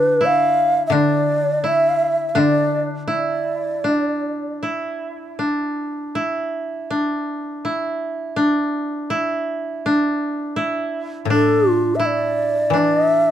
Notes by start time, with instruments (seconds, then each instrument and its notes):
Already playing: koto D3 D4 E4, shakuhachi B4
0.21 koto E4
0.25 shakuhachi F5
0.87 koto D3, shakuhachi E5
0.92 koto D4, shakuhachi D5
1.64 koto E4, shakuhachi E5
2.29 shakuhachi E5
2.35 koto D3 D4
2.39 shakuhachi D5
3.08 koto E4, shakuhachi D5
3.84 koto D4
4.63 koto E4
5.39 koto D4
6.15 koto E4
6.90 koto D4
7.65 koto E4
8.36 koto D4
9.10 koto E4
9.86 koto D4
10.56 koto E4
11.25 koto A2
11.30 koto D4, shakuhachi A4
11.71 shakuhachi F4
11.95 shakuhachi E5
12.00 koto E4
12.06 shakuhachi D5
12.70 koto E3 D4
12.78 shakuhachi D5
12.97 shakuhachi D#5
13.09 shakuhachi E5